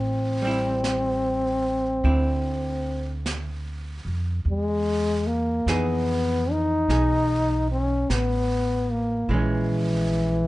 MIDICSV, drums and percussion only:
0, 0, Header, 1, 2, 480
1, 0, Start_track
1, 0, Tempo, 1207243
1, 1774, Time_signature, 4, 2, 24, 8
1, 4164, End_track
2, 0, Start_track
2, 0, Title_t, "Drums"
2, 334, Note_on_c, 9, 25, 23
2, 334, Note_on_c, 9, 38, 30
2, 334, Note_on_c, 9, 44, 38
2, 374, Note_off_c, 9, 38, 0
2, 374, Note_off_c, 9, 44, 0
2, 809, Note_off_c, 9, 25, 0
2, 809, Note_on_c, 9, 25, 27
2, 1296, Note_off_c, 9, 25, 0
2, 1296, Note_on_c, 9, 25, 23
2, 1296, Note_on_c, 9, 38, 30
2, 1296, Note_on_c, 9, 44, 49
2, 1335, Note_off_c, 9, 38, 0
2, 1335, Note_off_c, 9, 44, 0
2, 1777, Note_off_c, 9, 25, 0
2, 1777, Note_on_c, 9, 25, 30
2, 2257, Note_off_c, 9, 25, 0
2, 2257, Note_on_c, 9, 25, 25
2, 2257, Note_on_c, 9, 38, 31
2, 2257, Note_on_c, 9, 44, 41
2, 2297, Note_off_c, 9, 38, 0
2, 2297, Note_off_c, 9, 44, 0
2, 2742, Note_off_c, 9, 25, 0
2, 2742, Note_on_c, 9, 25, 27
2, 2742, Note_on_c, 9, 38, 21
2, 2782, Note_off_c, 9, 38, 0
2, 3220, Note_off_c, 9, 25, 0
2, 3220, Note_on_c, 9, 25, 26
2, 3220, Note_on_c, 9, 38, 34
2, 3220, Note_on_c, 9, 44, 38
2, 3260, Note_off_c, 9, 38, 0
2, 3260, Note_off_c, 9, 44, 0
2, 3698, Note_off_c, 9, 25, 0
2, 3698, Note_on_c, 9, 25, 29
2, 4164, Note_off_c, 9, 25, 0
2, 4164, End_track
0, 0, End_of_file